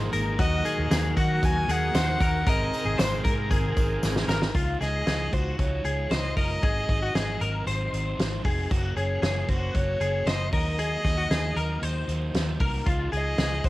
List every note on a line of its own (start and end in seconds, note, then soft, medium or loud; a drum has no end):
0.00 2.43 D#3 medium
0.00 0.13 G#3 medium
0.00 0.36 G#3 medium
0.00 0.13 A#3 loud
0.00 4.51 A#3 medium
0.00 0.13 D#4 loud
0.00 0.35 D#4 medium
0.00 0.11 G#4 medium
0.00 0.35 G#4 medium
0.00 0.36 A#4 medium
0.13 0.35 G#1 loud
0.13 0.38 A#3 medium
0.13 0.39 D#4 medium
0.13 0.39 G#4 medium
0.13 0.39 A#4 medium
0.13 closed hi-hat medium
0.13 tambourine soft
0.37 0.60 D#2 loud
0.37 0.65 D#3 medium
0.37 0.65 F#3 medium
0.37 2.44 F#3 medium
0.37 0.65 A#3 medium
0.37 2.42 D#4 medium
0.37 0.64 D#4 medium
0.37 2.42 F#4 medium
0.37 0.65 F#4 medium
0.37 2.43 A#4 medium
0.37 0.63 A#4 medium
0.37 0.88 D#5 loud
0.37 kick loud
0.37 closed hi-hat loud
0.64 0.90 A#3 soft
0.64 0.91 D#4 soft
0.64 0.90 G#4 medium
0.64 0.90 A#4 soft
0.64 closed hi-hat medium
0.64 tambourine medium
0.78 0.89 D#2 loud
0.90 1.12 D#2 loud
0.90 1.16 D#3 medium
0.90 1.17 F#3 medium
0.90 1.17 A#3 medium
0.90 1.16 D#4 medium
0.90 1.16 G#4 medium
0.90 1.15 A#4 loud
0.90 snare loud
0.90 closed hi-hat loud
0.90 tambourine medium
1.16 1.38 D#3 loud
1.16 1.42 A#3 soft
1.16 1.43 D#4 soft
1.16 1.66 F#4 medium
1.16 1.42 A#4 medium
1.16 1.46 F#5 loud
1.16 kick medium
1.16 closed hi-hat medium
1.16 tambourine soft
1.42 1.64 D#2 loud
1.42 1.69 F#3 medium
1.42 1.69 A#3 medium
1.42 1.69 D#4 medium
1.42 1.67 A#4 medium
1.42 1.72 G#5 loud
1.42 kick loud
1.42 closed hi-hat medium
1.42 tambourine soft
1.68 1.90 D#2 loud
1.68 1.94 A#3 soft
1.68 1.94 D#4 medium
1.68 1.95 G#4 medium
1.68 1.95 A#4 medium
1.68 2.50 F#5 loud
1.68 closed hi-hat medium
1.68 tambourine medium
1.94 2.16 D#2 loud
1.94 2.20 D#3 medium
1.94 2.21 F#3 medium
1.94 2.21 A#3 medium
1.94 2.20 D#4 medium
1.94 2.19 A#4 loud
1.94 2.21 C5 medium
1.94 snare loud
1.94 closed hi-hat loud
1.94 tambourine medium
2.20 2.42 D#2 loud
2.20 2.47 A#3 soft
2.20 2.46 D#4 soft
2.20 2.46 A#4 medium
2.20 kick loud
2.20 closed hi-hat medium
2.20 tambourine medium
2.45 2.68 G#1 medium
2.45 4.53 C3 medium
2.45 2.73 G#3 medium
2.45 4.53 G#3 medium
2.45 4.50 C4 medium
2.45 2.73 C4 medium
2.45 2.73 D#4 medium
2.45 4.50 G#4 medium
2.45 2.84 A#4 medium
2.45 4.51 A#4 medium
2.45 2.71 A#4 medium
2.45 3.02 D#5 loud
2.45 kick loud
2.45 closed hi-hat loud
2.45 tambourine soft
2.72 2.98 C4 soft
2.72 2.99 D#4 soft
2.72 2.98 A#4 medium
2.72 closed hi-hat medium
2.72 tambourine medium
2.85 2.96 G#1 medium
2.85 2.99 G#4 medium
2.98 3.20 G#1 medium
2.98 3.25 G#3 medium
2.98 3.25 C4 medium
2.98 3.25 D#4 medium
2.98 3.24 A#4 medium
2.98 3.24 C5 medium
2.98 3.26 C5 loud
2.98 snare loud
2.98 closed hi-hat loud
2.98 tambourine medium
3.24 3.52 G#2 loud
3.24 3.51 C4 soft
3.24 3.52 D#4 medium
3.24 3.50 A#4 medium
3.24 3.51 A#4 medium
3.24 4.26 A#4 medium
3.24 kick medium
3.24 closed hi-hat medium
3.24 tambourine soft
3.51 3.72 G#1 loud
3.51 3.77 G#3 medium
3.51 3.77 C4 medium
3.51 3.77 D#4 medium
3.51 4.25 G#4 medium
3.51 3.76 A#4 medium
3.51 kick loud
3.51 closed hi-hat medium
3.51 tambourine soft
3.76 3.98 G#1 medium
3.76 4.02 C4 soft
3.76 4.02 D#4 medium
3.76 4.03 A#4 medium
3.76 kick loud
3.76 closed hi-hat medium
3.76 tambourine medium
4.03 4.24 G#1 loud
4.03 4.29 G#3 medium
4.03 4.29 C4 medium
4.03 4.28 D#4 medium
4.03 4.27 A#4 medium
4.03 snare medium
4.03 tambourine medium
4.16 snare medium
4.28 4.49 G#1 medium
4.28 4.55 C4 medium
4.28 4.55 D#4 medium
4.28 4.54 A#4 medium
4.28 4.55 A#4 medium
4.28 snare medium
4.28 tambourine medium
4.42 snare medium
4.54 4.76 C#2 medium
4.54 4.80 C#3 medium
4.54 4.81 F3 medium
4.54 4.81 G#3 medium
4.54 4.80 D#4 medium
4.54 4.80 F4 medium
4.54 4.78 F4 medium
4.54 kick loud
4.54 closed hi-hat medium
4.80 5.02 C#2 medium
4.80 5.06 G#3 soft
4.80 5.06 D#4 soft
4.80 5.06 F4 soft
4.80 5.06 G#4 medium
4.80 5.34 D#5 medium
4.80 snare soft
4.80 closed hi-hat soft
5.05 5.28 C#2 medium
5.05 5.32 C#3 medium
5.05 5.32 F3 medium
5.05 5.33 D#4 medium
5.05 5.31 F4 medium
5.05 5.33 G#4 medium
5.05 snare medium
5.05 closed hi-hat medium
5.32 5.54 C#2 medium
5.32 5.58 G#3 soft
5.32 5.59 D#4 soft
5.32 5.58 F4 medium
5.32 5.82 F#4 medium
5.32 5.58 C5 medium
5.32 kick medium
5.32 closed hi-hat medium
5.58 5.80 C#2 medium
5.58 5.84 F3 soft
5.58 5.85 G#3 medium
5.58 5.83 D#4 medium
5.58 5.82 F4 medium
5.58 6.13 C#5 medium
5.58 kick medium
5.58 closed hi-hat medium
5.83 6.06 C#2 medium
5.83 6.10 G#3 soft
5.83 6.10 D#4 soft
5.83 6.10 F4 medium
5.83 6.11 G#4 medium
5.83 closed hi-hat medium
6.10 6.32 C#2 medium
6.10 6.36 C#3 medium
6.10 6.36 F3 medium
6.10 6.37 G#3 medium
6.10 6.35 F4 medium
6.10 6.36 C5 medium
6.10 6.37 D#5 medium
6.10 snare medium
6.10 closed hi-hat medium
6.36 6.58 F#1 medium
6.36 6.62 G#3 soft
6.36 6.62 D#4 soft
6.36 6.63 F4 soft
6.36 6.63 A#4 medium
6.36 7.89 D#5 loud
6.36 kick medium
6.36 open hi-hat medium
6.62 6.84 G#1 medium
6.62 6.88 G#2 medium
6.62 6.89 D#3 medium
6.62 6.89 F#3 medium
6.62 6.87 C4 medium
6.62 6.86 D#4 medium
6.62 6.99 G#4 medium
6.62 kick loud
6.62 closed hi-hat medium
6.88 7.10 G#1 medium
6.88 7.13 F#3 soft
6.88 7.14 C4 soft
6.88 7.14 D#4 medium
6.88 kick medium
6.88 closed hi-hat soft
7.02 7.15 F#4 medium
7.14 7.36 G#1 medium
7.14 7.40 G#2 medium
7.14 7.40 D#3 medium
7.14 7.41 F#3 medium
7.14 7.40 C4 medium
7.14 7.39 D#4 medium
7.14 7.41 G#4 medium
7.14 snare loud
7.14 closed hi-hat medium
7.40 7.62 G#1 medium
7.40 7.66 F#3 soft
7.40 7.67 C4 medium
7.40 7.66 D#4 medium
7.40 7.67 A#4 medium
7.40 closed hi-hat medium
7.66 7.88 G#1 loud
7.66 7.92 D#3 medium
7.66 7.93 F#3 medium
7.66 7.93 C4 medium
7.66 7.91 D#4 medium
7.66 8.41 C5 medium
7.66 closed hi-hat medium
7.92 8.14 G#1 medium
7.92 8.18 F#3 soft
7.92 8.18 C4 medium
7.92 8.19 D#4 medium
7.92 closed hi-hat medium
8.18 8.40 G#1 medium
8.18 8.44 G#2 medium
8.18 8.45 D#3 medium
8.18 8.45 F#3 medium
8.18 8.44 C4 medium
8.18 8.43 D#4 medium
8.18 snare loud
8.18 closed hi-hat medium
8.44 8.66 F1 medium
8.44 8.70 F#3 soft
8.44 8.71 C4 medium
8.44 8.70 D#4 medium
8.44 8.71 G#4 medium
8.44 kick loud
8.44 open hi-hat medium
8.70 8.92 F#1 medium
8.70 8.96 F#2 medium
8.70 8.97 C#3 medium
8.70 8.97 F#3 medium
8.70 8.96 A#3 medium
8.70 8.95 C#4 medium
8.70 8.96 F#4 medium
8.70 kick loud
8.70 closed hi-hat medium
8.96 9.18 F#1 medium
8.96 9.22 F#3 soft
8.96 9.21 A#3 soft
8.96 9.22 C#4 medium
8.96 9.21 G#4 medium
8.96 9.50 C#5 medium
8.96 closed hi-hat soft
9.21 9.44 F#1 medium
9.21 9.48 F#2 medium
9.21 9.48 C#3 medium
9.21 9.49 F#3 medium
9.21 9.48 A#3 medium
9.21 9.47 C#4 medium
9.21 9.48 G#4 medium
9.21 snare loud
9.21 closed hi-hat medium
9.48 9.70 F#1 medium
9.48 9.73 F#3 soft
9.48 9.74 A#3 soft
9.48 9.74 C#4 soft
9.48 9.98 F#4 medium
9.48 9.77 C5 medium
9.48 kick medium
9.48 closed hi-hat medium
9.73 9.96 F#1 medium
9.73 10.00 C#3 soft
9.73 10.01 F#3 medium
9.73 10.00 A#3 medium
9.73 9.98 C#4 medium
9.73 10.29 C#5 loud
9.73 kick medium
9.73 closed hi-hat medium
9.99 10.22 F#1 medium
9.99 10.26 F#3 soft
9.99 10.26 A#3 soft
9.99 10.26 C#4 medium
9.99 10.27 G#4 medium
9.99 closed hi-hat medium
10.26 10.48 F#1 loud
10.26 10.53 F#2 medium
10.26 10.53 C#3 medium
10.26 10.53 F#3 medium
10.26 10.53 A#3 medium
10.26 10.52 C#4 medium
10.26 10.53 C5 medium
10.26 10.52 D#5 loud
10.26 snare medium
10.26 closed hi-hat medium
10.52 10.95 D#2 medium
10.52 10.78 F#3 soft
10.52 10.78 A#3 soft
10.52 10.79 D#4 medium
10.52 10.79 A#4 medium
10.52 12.05 D#5 loud
10.52 kick medium
10.52 open hi-hat medium
10.78 11.05 D#3 medium
10.78 11.05 F#3 medium
10.78 11.05 A#3 medium
10.78 11.04 D#4 medium
10.78 11.16 G#4 medium
10.78 closed hi-hat loud
11.05 11.26 D#2 medium
11.05 11.30 F#3 soft
11.05 11.31 A#3 soft
11.05 11.31 D#4 medium
11.05 kick medium
11.05 snare soft
11.05 closed hi-hat soft
11.18 11.30 F#4 medium
11.30 11.52 D#2 medium
11.30 11.57 D#3 medium
11.30 11.57 F#3 medium
11.30 11.56 A#3 medium
11.30 11.55 D#4 medium
11.30 11.57 G#4 medium
11.30 snare loud
11.30 closed hi-hat medium
11.56 11.78 D#2 loud
11.56 11.81 F#3 soft
11.56 11.82 A#3 medium
11.56 11.83 D#4 medium
11.56 11.83 A#4 medium
11.56 closed hi-hat medium
11.81 12.04 D#2 medium
11.81 12.08 D#3 medium
11.81 12.09 F#3 medium
11.81 12.08 A#3 medium
11.81 12.06 D#4 medium
11.81 12.57 C5 medium
11.81 closed hi-hat medium
12.07 12.30 D#2 medium
12.07 12.33 F#3 soft
12.07 12.34 A#3 soft
12.07 12.34 D#4 medium
12.07 closed hi-hat medium
12.34 12.56 D#2 medium
12.34 12.60 D#3 medium
12.34 12.61 F#3 medium
12.34 12.60 A#3 medium
12.34 12.58 D#4 medium
12.34 snare loud
12.34 closed hi-hat medium
12.59 12.82 C2 medium
12.59 12.86 F#3 soft
12.59 12.87 A#3 medium
12.59 12.86 D#4 medium
12.59 12.87 A#4 medium
12.59 kick loud
12.59 open hi-hat medium
12.86 13.08 C#2 medium
12.86 13.12 C#3 medium
12.86 13.13 F3 medium
12.86 13.11 G#3 medium
12.86 13.09 D#4 medium
12.86 13.12 F4 medium
12.86 kick loud
12.86 closed hi-hat medium
13.11 13.34 C#2 medium
13.11 13.36 F3 soft
13.11 13.37 G#3 medium
13.11 13.38 D#4 soft
13.11 13.37 G#4 medium
13.11 13.66 D#5 loud
13.11 closed hi-hat soft
13.37 13.60 C#2 medium
13.37 13.64 C#3 medium
13.37 13.64 F3 medium
13.37 13.63 G#3 medium
13.37 13.62 D#4 medium
13.37 13.64 G#4 medium
13.37 snare loud
13.37 closed hi-hat medium
13.63 13.69 C#2 medium
13.63 13.69 F3 soft
13.63 13.69 G#3 soft
13.63 13.69 D#4 soft
13.63 13.69 F#4 medium
13.63 13.69 C5 medium
13.63 kick medium
13.63 closed hi-hat medium